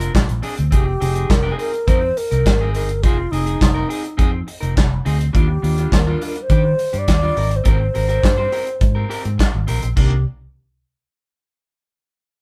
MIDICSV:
0, 0, Header, 1, 6, 480
1, 0, Start_track
1, 0, Tempo, 577478
1, 602, Time_signature, 4, 2, 24, 8
1, 10321, End_track
2, 0, Start_track
2, 0, Title_t, "Alto flute"
2, 0, Program_c, 0, 73
2, 0, Note_on_c, 0, 65, 90
2, 337, Note_off_c, 0, 65, 0
2, 611, Note_on_c, 0, 67, 109
2, 1083, Note_on_c, 0, 70, 104
2, 1096, Note_off_c, 0, 67, 0
2, 1312, Note_off_c, 0, 70, 0
2, 1317, Note_on_c, 0, 70, 113
2, 1563, Note_on_c, 0, 72, 110
2, 1575, Note_off_c, 0, 70, 0
2, 1806, Note_on_c, 0, 70, 111
2, 1819, Note_off_c, 0, 72, 0
2, 2271, Note_off_c, 0, 70, 0
2, 2276, Note_on_c, 0, 70, 90
2, 2518, Note_on_c, 0, 65, 106
2, 2531, Note_off_c, 0, 70, 0
2, 2753, Note_on_c, 0, 63, 101
2, 2766, Note_off_c, 0, 65, 0
2, 3719, Note_off_c, 0, 63, 0
2, 4457, Note_on_c, 0, 67, 102
2, 4951, Note_on_c, 0, 70, 92
2, 4963, Note_off_c, 0, 67, 0
2, 5178, Note_off_c, 0, 70, 0
2, 5200, Note_on_c, 0, 70, 98
2, 5337, Note_on_c, 0, 72, 106
2, 5349, Note_off_c, 0, 70, 0
2, 5804, Note_on_c, 0, 74, 113
2, 5817, Note_off_c, 0, 72, 0
2, 6285, Note_on_c, 0, 72, 91
2, 6297, Note_off_c, 0, 74, 0
2, 6385, Note_off_c, 0, 72, 0
2, 6405, Note_on_c, 0, 72, 122
2, 7791, Note_off_c, 0, 72, 0
2, 8293, Note_on_c, 0, 67, 91
2, 8512, Note_off_c, 0, 67, 0
2, 10321, End_track
3, 0, Start_track
3, 0, Title_t, "Clean electric guitar"
3, 0, Program_c, 1, 27
3, 0, Note_on_c, 1, 60, 57
3, 0, Note_on_c, 1, 62, 57
3, 0, Note_on_c, 1, 70, 63
3, 109, Note_off_c, 1, 60, 0
3, 110, Note_off_c, 1, 62, 0
3, 119, Note_off_c, 1, 70, 0
3, 352, Note_on_c, 1, 60, 77
3, 357, Note_on_c, 1, 62, 78
3, 362, Note_on_c, 1, 68, 85
3, 457, Note_off_c, 1, 68, 0
3, 467, Note_off_c, 1, 62, 0
3, 530, Note_off_c, 1, 60, 0
3, 588, Note_on_c, 1, 60, 86
3, 599, Note_on_c, 1, 63, 89
3, 602, Note_on_c, 1, 68, 85
3, 703, Note_off_c, 1, 68, 0
3, 714, Note_off_c, 1, 63, 0
3, 768, Note_off_c, 1, 60, 0
3, 834, Note_on_c, 1, 60, 62
3, 840, Note_on_c, 1, 68, 64
3, 843, Note_on_c, 1, 63, 67
3, 939, Note_off_c, 1, 68, 0
3, 946, Note_off_c, 1, 63, 0
3, 949, Note_on_c, 1, 68, 59
3, 951, Note_off_c, 1, 60, 0
3, 956, Note_on_c, 1, 63, 55
3, 961, Note_on_c, 1, 60, 48
3, 1066, Note_off_c, 1, 60, 0
3, 1076, Note_off_c, 1, 68, 0
3, 1077, Note_off_c, 1, 63, 0
3, 1186, Note_on_c, 1, 68, 91
3, 1189, Note_on_c, 1, 63, 78
3, 1195, Note_on_c, 1, 60, 76
3, 1299, Note_off_c, 1, 60, 0
3, 1301, Note_off_c, 1, 63, 0
3, 1307, Note_off_c, 1, 68, 0
3, 1309, Note_on_c, 1, 60, 65
3, 1311, Note_on_c, 1, 63, 71
3, 1317, Note_on_c, 1, 68, 72
3, 1429, Note_off_c, 1, 68, 0
3, 1433, Note_off_c, 1, 63, 0
3, 1451, Note_off_c, 1, 60, 0
3, 1556, Note_on_c, 1, 60, 90
3, 1561, Note_on_c, 1, 63, 86
3, 1569, Note_on_c, 1, 70, 88
3, 1676, Note_off_c, 1, 63, 0
3, 1678, Note_off_c, 1, 70, 0
3, 1732, Note_off_c, 1, 60, 0
3, 1922, Note_on_c, 1, 70, 57
3, 1929, Note_on_c, 1, 63, 47
3, 1934, Note_on_c, 1, 60, 46
3, 2036, Note_off_c, 1, 60, 0
3, 2042, Note_off_c, 1, 63, 0
3, 2054, Note_off_c, 1, 70, 0
3, 2168, Note_on_c, 1, 68, 80
3, 2170, Note_on_c, 1, 63, 78
3, 2176, Note_on_c, 1, 60, 76
3, 2278, Note_off_c, 1, 60, 0
3, 2287, Note_off_c, 1, 63, 0
3, 2288, Note_on_c, 1, 60, 62
3, 2289, Note_off_c, 1, 68, 0
3, 2297, Note_on_c, 1, 63, 77
3, 2299, Note_on_c, 1, 68, 75
3, 2397, Note_off_c, 1, 68, 0
3, 2409, Note_off_c, 1, 63, 0
3, 2421, Note_off_c, 1, 60, 0
3, 2533, Note_on_c, 1, 60, 80
3, 2537, Note_on_c, 1, 63, 100
3, 2541, Note_on_c, 1, 68, 101
3, 2640, Note_off_c, 1, 68, 0
3, 2644, Note_off_c, 1, 63, 0
3, 2701, Note_off_c, 1, 60, 0
3, 2760, Note_on_c, 1, 60, 66
3, 2768, Note_on_c, 1, 63, 65
3, 2775, Note_on_c, 1, 68, 71
3, 2866, Note_off_c, 1, 68, 0
3, 2876, Note_off_c, 1, 63, 0
3, 2876, Note_on_c, 1, 68, 70
3, 2878, Note_off_c, 1, 60, 0
3, 2886, Note_on_c, 1, 63, 55
3, 2888, Note_on_c, 1, 60, 48
3, 2994, Note_off_c, 1, 60, 0
3, 3000, Note_off_c, 1, 63, 0
3, 3003, Note_off_c, 1, 68, 0
3, 3113, Note_on_c, 1, 70, 94
3, 3125, Note_on_c, 1, 63, 86
3, 3127, Note_on_c, 1, 60, 68
3, 3219, Note_off_c, 1, 60, 0
3, 3223, Note_off_c, 1, 63, 0
3, 3229, Note_on_c, 1, 60, 68
3, 3233, Note_on_c, 1, 63, 76
3, 3238, Note_off_c, 1, 70, 0
3, 3241, Note_on_c, 1, 68, 82
3, 3349, Note_off_c, 1, 68, 0
3, 3359, Note_off_c, 1, 63, 0
3, 3372, Note_off_c, 1, 60, 0
3, 3468, Note_on_c, 1, 60, 74
3, 3472, Note_on_c, 1, 63, 97
3, 3477, Note_on_c, 1, 68, 103
3, 3583, Note_off_c, 1, 63, 0
3, 3584, Note_off_c, 1, 68, 0
3, 3649, Note_off_c, 1, 60, 0
3, 3828, Note_on_c, 1, 70, 60
3, 3830, Note_on_c, 1, 63, 61
3, 3837, Note_on_c, 1, 60, 49
3, 3941, Note_off_c, 1, 60, 0
3, 3949, Note_off_c, 1, 63, 0
3, 3956, Note_off_c, 1, 70, 0
3, 4199, Note_on_c, 1, 60, 85
3, 4200, Note_on_c, 1, 63, 84
3, 4207, Note_on_c, 1, 68, 91
3, 4307, Note_off_c, 1, 68, 0
3, 4312, Note_off_c, 1, 63, 0
3, 4375, Note_off_c, 1, 60, 0
3, 4431, Note_on_c, 1, 55, 82
3, 4433, Note_on_c, 1, 62, 94
3, 4443, Note_on_c, 1, 65, 91
3, 4550, Note_off_c, 1, 65, 0
3, 4562, Note_off_c, 1, 62, 0
3, 4611, Note_off_c, 1, 55, 0
3, 4673, Note_on_c, 1, 55, 57
3, 4679, Note_on_c, 1, 62, 60
3, 4681, Note_on_c, 1, 65, 56
3, 4799, Note_off_c, 1, 65, 0
3, 4804, Note_off_c, 1, 62, 0
3, 4809, Note_off_c, 1, 55, 0
3, 4809, Note_on_c, 1, 65, 62
3, 4814, Note_on_c, 1, 62, 54
3, 4819, Note_on_c, 1, 55, 58
3, 4918, Note_off_c, 1, 55, 0
3, 4923, Note_off_c, 1, 62, 0
3, 4929, Note_off_c, 1, 65, 0
3, 5045, Note_on_c, 1, 65, 87
3, 5050, Note_on_c, 1, 62, 78
3, 5058, Note_on_c, 1, 55, 68
3, 5158, Note_off_c, 1, 55, 0
3, 5162, Note_off_c, 1, 62, 0
3, 5165, Note_off_c, 1, 65, 0
3, 5168, Note_on_c, 1, 55, 67
3, 5172, Note_on_c, 1, 62, 72
3, 5175, Note_on_c, 1, 65, 70
3, 5283, Note_off_c, 1, 65, 0
3, 5292, Note_off_c, 1, 62, 0
3, 5302, Note_off_c, 1, 55, 0
3, 5405, Note_on_c, 1, 55, 81
3, 5411, Note_on_c, 1, 62, 84
3, 5416, Note_on_c, 1, 67, 90
3, 5524, Note_off_c, 1, 67, 0
3, 5526, Note_off_c, 1, 62, 0
3, 5578, Note_off_c, 1, 55, 0
3, 5760, Note_on_c, 1, 62, 48
3, 5760, Note_on_c, 1, 67, 62
3, 5770, Note_on_c, 1, 55, 51
3, 5877, Note_off_c, 1, 55, 0
3, 5877, Note_off_c, 1, 62, 0
3, 5892, Note_off_c, 1, 67, 0
3, 6004, Note_on_c, 1, 65, 95
3, 6006, Note_on_c, 1, 62, 74
3, 6013, Note_on_c, 1, 55, 82
3, 6117, Note_off_c, 1, 62, 0
3, 6120, Note_off_c, 1, 65, 0
3, 6121, Note_on_c, 1, 60, 56
3, 6124, Note_on_c, 1, 67, 62
3, 6131, Note_on_c, 1, 70, 68
3, 6182, Note_off_c, 1, 55, 0
3, 6227, Note_off_c, 1, 70, 0
3, 6231, Note_off_c, 1, 67, 0
3, 6258, Note_off_c, 1, 60, 0
3, 6349, Note_on_c, 1, 60, 82
3, 6359, Note_on_c, 1, 67, 93
3, 6363, Note_on_c, 1, 70, 90
3, 6471, Note_off_c, 1, 70, 0
3, 6482, Note_off_c, 1, 67, 0
3, 6530, Note_off_c, 1, 60, 0
3, 6601, Note_on_c, 1, 60, 62
3, 6606, Note_on_c, 1, 67, 61
3, 6610, Note_on_c, 1, 70, 72
3, 6710, Note_off_c, 1, 70, 0
3, 6712, Note_off_c, 1, 67, 0
3, 6720, Note_on_c, 1, 70, 64
3, 6722, Note_on_c, 1, 67, 58
3, 6723, Note_off_c, 1, 60, 0
3, 6733, Note_on_c, 1, 60, 50
3, 6828, Note_off_c, 1, 60, 0
3, 6833, Note_off_c, 1, 67, 0
3, 6839, Note_off_c, 1, 70, 0
3, 6962, Note_on_c, 1, 72, 83
3, 6969, Note_on_c, 1, 60, 69
3, 6969, Note_on_c, 1, 67, 90
3, 7073, Note_off_c, 1, 60, 0
3, 7076, Note_off_c, 1, 67, 0
3, 7082, Note_on_c, 1, 60, 69
3, 7086, Note_on_c, 1, 67, 75
3, 7089, Note_off_c, 1, 72, 0
3, 7092, Note_on_c, 1, 70, 81
3, 7190, Note_off_c, 1, 70, 0
3, 7197, Note_off_c, 1, 67, 0
3, 7219, Note_off_c, 1, 60, 0
3, 7439, Note_on_c, 1, 70, 67
3, 7447, Note_on_c, 1, 67, 53
3, 7455, Note_on_c, 1, 60, 51
3, 7546, Note_off_c, 1, 60, 0
3, 7553, Note_off_c, 1, 67, 0
3, 7556, Note_on_c, 1, 60, 77
3, 7558, Note_off_c, 1, 70, 0
3, 7563, Note_on_c, 1, 67, 88
3, 7568, Note_on_c, 1, 70, 104
3, 7676, Note_off_c, 1, 70, 0
3, 7684, Note_off_c, 1, 67, 0
3, 7733, Note_off_c, 1, 60, 0
3, 8039, Note_on_c, 1, 60, 73
3, 8047, Note_on_c, 1, 67, 72
3, 8053, Note_on_c, 1, 70, 82
3, 8159, Note_off_c, 1, 70, 0
3, 8167, Note_off_c, 1, 67, 0
3, 8215, Note_off_c, 1, 60, 0
3, 8282, Note_on_c, 1, 51, 82
3, 8288, Note_on_c, 1, 58, 92
3, 8294, Note_on_c, 1, 62, 78
3, 8427, Note_off_c, 1, 51, 0
3, 8430, Note_off_c, 1, 58, 0
3, 8433, Note_off_c, 1, 62, 0
3, 10321, End_track
4, 0, Start_track
4, 0, Title_t, "Fingered electric bass"
4, 0, Program_c, 2, 33
4, 122, Note_on_c, 2, 34, 96
4, 213, Note_off_c, 2, 34, 0
4, 245, Note_on_c, 2, 34, 81
4, 335, Note_off_c, 2, 34, 0
4, 488, Note_on_c, 2, 38, 77
4, 577, Note_off_c, 2, 38, 0
4, 600, Note_on_c, 2, 29, 100
4, 783, Note_off_c, 2, 29, 0
4, 847, Note_on_c, 2, 29, 120
4, 1028, Note_off_c, 2, 29, 0
4, 1084, Note_on_c, 2, 29, 93
4, 1266, Note_off_c, 2, 29, 0
4, 1561, Note_on_c, 2, 41, 101
4, 1744, Note_off_c, 2, 41, 0
4, 1926, Note_on_c, 2, 36, 93
4, 2016, Note_off_c, 2, 36, 0
4, 2045, Note_on_c, 2, 32, 100
4, 2287, Note_off_c, 2, 32, 0
4, 2287, Note_on_c, 2, 31, 91
4, 2527, Note_off_c, 2, 31, 0
4, 2527, Note_on_c, 2, 29, 109
4, 2708, Note_off_c, 2, 29, 0
4, 2761, Note_on_c, 2, 29, 103
4, 2944, Note_off_c, 2, 29, 0
4, 3005, Note_on_c, 2, 29, 88
4, 3187, Note_off_c, 2, 29, 0
4, 3485, Note_on_c, 2, 41, 116
4, 3667, Note_off_c, 2, 41, 0
4, 3844, Note_on_c, 2, 29, 86
4, 3935, Note_off_c, 2, 29, 0
4, 3969, Note_on_c, 2, 29, 93
4, 4150, Note_off_c, 2, 29, 0
4, 4206, Note_on_c, 2, 38, 93
4, 4388, Note_off_c, 2, 38, 0
4, 4447, Note_on_c, 2, 39, 121
4, 4628, Note_off_c, 2, 39, 0
4, 4681, Note_on_c, 2, 39, 107
4, 4864, Note_off_c, 2, 39, 0
4, 4923, Note_on_c, 2, 39, 104
4, 5106, Note_off_c, 2, 39, 0
4, 5403, Note_on_c, 2, 51, 106
4, 5586, Note_off_c, 2, 51, 0
4, 5768, Note_on_c, 2, 43, 95
4, 5858, Note_off_c, 2, 43, 0
4, 5886, Note_on_c, 2, 39, 87
4, 6068, Note_off_c, 2, 39, 0
4, 6128, Note_on_c, 2, 32, 97
4, 6309, Note_off_c, 2, 32, 0
4, 6368, Note_on_c, 2, 32, 112
4, 6549, Note_off_c, 2, 32, 0
4, 6614, Note_on_c, 2, 32, 107
4, 6793, Note_off_c, 2, 32, 0
4, 6848, Note_on_c, 2, 43, 104
4, 7029, Note_off_c, 2, 43, 0
4, 7327, Note_on_c, 2, 44, 103
4, 7508, Note_off_c, 2, 44, 0
4, 7692, Note_on_c, 2, 44, 93
4, 7781, Note_off_c, 2, 44, 0
4, 7934, Note_on_c, 2, 32, 84
4, 8022, Note_off_c, 2, 32, 0
4, 8054, Note_on_c, 2, 34, 84
4, 8142, Note_off_c, 2, 34, 0
4, 8175, Note_on_c, 2, 34, 87
4, 8262, Note_off_c, 2, 34, 0
4, 8287, Note_on_c, 2, 36, 90
4, 8509, Note_off_c, 2, 36, 0
4, 10321, End_track
5, 0, Start_track
5, 0, Title_t, "Muted clean electric guitar strokes"
5, 119, Note_on_c, 9, 29, 39
5, 202, Note_off_c, 9, 29, 0
5, 231, Note_on_c, 9, 29, 47
5, 314, Note_off_c, 9, 29, 0
5, 467, Note_on_c, 9, 29, 47
5, 550, Note_off_c, 9, 29, 0
5, 713, Note_on_c, 9, 29, 50
5, 796, Note_off_c, 9, 29, 0
5, 1076, Note_on_c, 9, 29, 36
5, 1159, Note_off_c, 9, 29, 0
5, 1439, Note_on_c, 9, 29, 42
5, 1522, Note_off_c, 9, 29, 0
5, 1682, Note_on_c, 9, 29, 47
5, 1765, Note_off_c, 9, 29, 0
5, 1803, Note_on_c, 9, 29, 42
5, 1886, Note_off_c, 9, 29, 0
5, 2046, Note_on_c, 9, 29, 37
5, 2129, Note_off_c, 9, 29, 0
5, 2407, Note_on_c, 9, 29, 44
5, 2490, Note_off_c, 9, 29, 0
5, 2650, Note_on_c, 9, 29, 51
5, 2733, Note_off_c, 9, 29, 0
5, 3004, Note_on_c, 9, 29, 39
5, 3087, Note_off_c, 9, 29, 0
5, 3359, Note_on_c, 9, 29, 46
5, 3442, Note_off_c, 9, 29, 0
5, 3593, Note_on_c, 9, 29, 41
5, 3676, Note_off_c, 9, 29, 0
5, 3714, Note_on_c, 9, 29, 46
5, 3798, Note_off_c, 9, 29, 0
5, 3951, Note_on_c, 9, 29, 41
5, 4034, Note_off_c, 9, 29, 0
5, 4068, Note_on_c, 9, 29, 46
5, 4151, Note_off_c, 9, 29, 0
5, 4317, Note_on_c, 9, 29, 47
5, 4400, Note_off_c, 9, 29, 0
5, 4560, Note_on_c, 9, 29, 45
5, 4643, Note_off_c, 9, 29, 0
5, 4928, Note_on_c, 9, 29, 44
5, 5011, Note_off_c, 9, 29, 0
5, 5293, Note_on_c, 9, 29, 38
5, 5376, Note_off_c, 9, 29, 0
5, 5527, Note_on_c, 9, 29, 42
5, 5610, Note_off_c, 9, 29, 0
5, 5644, Note_on_c, 9, 29, 33
5, 5727, Note_off_c, 9, 29, 0
5, 5886, Note_on_c, 9, 29, 52
5, 5970, Note_off_c, 9, 29, 0
5, 6237, Note_on_c, 9, 29, 52
5, 6320, Note_off_c, 9, 29, 0
5, 6481, Note_on_c, 9, 29, 60
5, 6564, Note_off_c, 9, 29, 0
5, 6838, Note_on_c, 9, 29, 39
5, 6921, Note_off_c, 9, 29, 0
5, 7200, Note_on_c, 9, 29, 41
5, 7283, Note_off_c, 9, 29, 0
5, 7332, Note_on_c, 9, 29, 37
5, 7415, Note_off_c, 9, 29, 0
5, 7686, Note_on_c, 9, 29, 31
5, 7769, Note_off_c, 9, 29, 0
5, 7796, Note_on_c, 9, 29, 39
5, 7879, Note_off_c, 9, 29, 0
5, 7921, Note_on_c, 9, 29, 40
5, 8004, Note_off_c, 9, 29, 0
5, 8169, Note_on_c, 9, 29, 44
5, 8252, Note_off_c, 9, 29, 0
5, 10321, End_track
6, 0, Start_track
6, 0, Title_t, "Drums"
6, 7, Note_on_c, 9, 42, 52
6, 90, Note_off_c, 9, 42, 0
6, 122, Note_on_c, 9, 42, 60
6, 123, Note_on_c, 9, 36, 116
6, 130, Note_on_c, 9, 38, 118
6, 135, Note_on_c, 9, 39, 101
6, 206, Note_off_c, 9, 36, 0
6, 206, Note_off_c, 9, 42, 0
6, 213, Note_off_c, 9, 38, 0
6, 218, Note_off_c, 9, 39, 0
6, 241, Note_on_c, 9, 42, 45
6, 324, Note_off_c, 9, 42, 0
6, 357, Note_on_c, 9, 46, 72
6, 440, Note_off_c, 9, 46, 0
6, 476, Note_on_c, 9, 42, 46
6, 560, Note_off_c, 9, 42, 0
6, 599, Note_on_c, 9, 42, 68
6, 601, Note_on_c, 9, 36, 107
6, 683, Note_off_c, 9, 42, 0
6, 684, Note_off_c, 9, 36, 0
6, 844, Note_on_c, 9, 46, 67
6, 927, Note_off_c, 9, 46, 0
6, 959, Note_on_c, 9, 42, 41
6, 1042, Note_off_c, 9, 42, 0
6, 1080, Note_on_c, 9, 36, 127
6, 1083, Note_on_c, 9, 42, 74
6, 1088, Note_on_c, 9, 38, 106
6, 1092, Note_on_c, 9, 39, 89
6, 1163, Note_off_c, 9, 36, 0
6, 1166, Note_off_c, 9, 42, 0
6, 1171, Note_off_c, 9, 38, 0
6, 1175, Note_off_c, 9, 39, 0
6, 1323, Note_on_c, 9, 46, 63
6, 1406, Note_off_c, 9, 46, 0
6, 1444, Note_on_c, 9, 42, 34
6, 1527, Note_off_c, 9, 42, 0
6, 1560, Note_on_c, 9, 36, 126
6, 1562, Note_on_c, 9, 42, 81
6, 1643, Note_off_c, 9, 36, 0
6, 1645, Note_off_c, 9, 42, 0
6, 1804, Note_on_c, 9, 46, 65
6, 1887, Note_off_c, 9, 46, 0
6, 1928, Note_on_c, 9, 42, 49
6, 2011, Note_off_c, 9, 42, 0
6, 2044, Note_on_c, 9, 36, 102
6, 2044, Note_on_c, 9, 42, 61
6, 2051, Note_on_c, 9, 38, 115
6, 2056, Note_on_c, 9, 39, 103
6, 2127, Note_off_c, 9, 36, 0
6, 2127, Note_off_c, 9, 42, 0
6, 2135, Note_off_c, 9, 38, 0
6, 2139, Note_off_c, 9, 39, 0
6, 2282, Note_on_c, 9, 46, 63
6, 2365, Note_off_c, 9, 46, 0
6, 2401, Note_on_c, 9, 42, 53
6, 2485, Note_off_c, 9, 42, 0
6, 2523, Note_on_c, 9, 36, 117
6, 2523, Note_on_c, 9, 42, 71
6, 2606, Note_off_c, 9, 36, 0
6, 2606, Note_off_c, 9, 42, 0
6, 2766, Note_on_c, 9, 46, 60
6, 2849, Note_off_c, 9, 46, 0
6, 2882, Note_on_c, 9, 42, 44
6, 2965, Note_off_c, 9, 42, 0
6, 3002, Note_on_c, 9, 36, 117
6, 3006, Note_on_c, 9, 42, 75
6, 3011, Note_on_c, 9, 38, 106
6, 3015, Note_on_c, 9, 39, 91
6, 3085, Note_off_c, 9, 36, 0
6, 3089, Note_off_c, 9, 42, 0
6, 3094, Note_off_c, 9, 38, 0
6, 3098, Note_off_c, 9, 39, 0
6, 3245, Note_on_c, 9, 46, 69
6, 3328, Note_off_c, 9, 46, 0
6, 3360, Note_on_c, 9, 42, 35
6, 3443, Note_off_c, 9, 42, 0
6, 3481, Note_on_c, 9, 36, 110
6, 3482, Note_on_c, 9, 42, 74
6, 3565, Note_off_c, 9, 36, 0
6, 3566, Note_off_c, 9, 42, 0
6, 3722, Note_on_c, 9, 46, 61
6, 3805, Note_off_c, 9, 46, 0
6, 3846, Note_on_c, 9, 42, 48
6, 3929, Note_off_c, 9, 42, 0
6, 3965, Note_on_c, 9, 42, 57
6, 3966, Note_on_c, 9, 36, 116
6, 3972, Note_on_c, 9, 38, 123
6, 3977, Note_on_c, 9, 39, 92
6, 4048, Note_off_c, 9, 42, 0
6, 4049, Note_off_c, 9, 36, 0
6, 4056, Note_off_c, 9, 38, 0
6, 4060, Note_off_c, 9, 39, 0
6, 4205, Note_on_c, 9, 46, 64
6, 4288, Note_off_c, 9, 46, 0
6, 4329, Note_on_c, 9, 42, 50
6, 4412, Note_off_c, 9, 42, 0
6, 4444, Note_on_c, 9, 36, 115
6, 4449, Note_on_c, 9, 42, 59
6, 4527, Note_off_c, 9, 36, 0
6, 4532, Note_off_c, 9, 42, 0
6, 4688, Note_on_c, 9, 46, 64
6, 4772, Note_off_c, 9, 46, 0
6, 4803, Note_on_c, 9, 42, 44
6, 4886, Note_off_c, 9, 42, 0
6, 4922, Note_on_c, 9, 36, 115
6, 4928, Note_on_c, 9, 42, 74
6, 4932, Note_on_c, 9, 38, 105
6, 4937, Note_on_c, 9, 39, 92
6, 5005, Note_off_c, 9, 36, 0
6, 5011, Note_off_c, 9, 42, 0
6, 5015, Note_off_c, 9, 38, 0
6, 5020, Note_off_c, 9, 39, 0
6, 5166, Note_on_c, 9, 46, 68
6, 5249, Note_off_c, 9, 46, 0
6, 5284, Note_on_c, 9, 42, 33
6, 5367, Note_off_c, 9, 42, 0
6, 5400, Note_on_c, 9, 42, 76
6, 5401, Note_on_c, 9, 36, 120
6, 5483, Note_off_c, 9, 42, 0
6, 5484, Note_off_c, 9, 36, 0
6, 5643, Note_on_c, 9, 46, 57
6, 5726, Note_off_c, 9, 46, 0
6, 5763, Note_on_c, 9, 42, 50
6, 5846, Note_off_c, 9, 42, 0
6, 5883, Note_on_c, 9, 42, 59
6, 5886, Note_on_c, 9, 36, 108
6, 5891, Note_on_c, 9, 38, 127
6, 5895, Note_on_c, 9, 39, 98
6, 5966, Note_off_c, 9, 42, 0
6, 5969, Note_off_c, 9, 36, 0
6, 5974, Note_off_c, 9, 38, 0
6, 5978, Note_off_c, 9, 39, 0
6, 6124, Note_on_c, 9, 46, 72
6, 6207, Note_off_c, 9, 46, 0
6, 6244, Note_on_c, 9, 42, 49
6, 6327, Note_off_c, 9, 42, 0
6, 6359, Note_on_c, 9, 42, 69
6, 6364, Note_on_c, 9, 36, 119
6, 6442, Note_off_c, 9, 42, 0
6, 6447, Note_off_c, 9, 36, 0
6, 6606, Note_on_c, 9, 46, 58
6, 6690, Note_off_c, 9, 46, 0
6, 6725, Note_on_c, 9, 42, 42
6, 6808, Note_off_c, 9, 42, 0
6, 6845, Note_on_c, 9, 36, 115
6, 6850, Note_on_c, 9, 42, 75
6, 6854, Note_on_c, 9, 38, 104
6, 6859, Note_on_c, 9, 39, 91
6, 6928, Note_off_c, 9, 36, 0
6, 6933, Note_off_c, 9, 42, 0
6, 6937, Note_off_c, 9, 38, 0
6, 6942, Note_off_c, 9, 39, 0
6, 7085, Note_on_c, 9, 46, 71
6, 7168, Note_off_c, 9, 46, 0
6, 7205, Note_on_c, 9, 42, 35
6, 7288, Note_off_c, 9, 42, 0
6, 7323, Note_on_c, 9, 42, 76
6, 7324, Note_on_c, 9, 36, 112
6, 7406, Note_off_c, 9, 42, 0
6, 7407, Note_off_c, 9, 36, 0
6, 7570, Note_on_c, 9, 46, 58
6, 7653, Note_off_c, 9, 46, 0
6, 7690, Note_on_c, 9, 42, 48
6, 7773, Note_off_c, 9, 42, 0
6, 7808, Note_on_c, 9, 36, 98
6, 7810, Note_on_c, 9, 42, 56
6, 7818, Note_on_c, 9, 38, 125
6, 7823, Note_on_c, 9, 39, 93
6, 7891, Note_off_c, 9, 36, 0
6, 7893, Note_off_c, 9, 42, 0
6, 7901, Note_off_c, 9, 38, 0
6, 7906, Note_off_c, 9, 39, 0
6, 8044, Note_on_c, 9, 46, 66
6, 8127, Note_off_c, 9, 46, 0
6, 8167, Note_on_c, 9, 42, 50
6, 8250, Note_off_c, 9, 42, 0
6, 8286, Note_on_c, 9, 36, 106
6, 8286, Note_on_c, 9, 49, 78
6, 8369, Note_off_c, 9, 36, 0
6, 8369, Note_off_c, 9, 49, 0
6, 10321, End_track
0, 0, End_of_file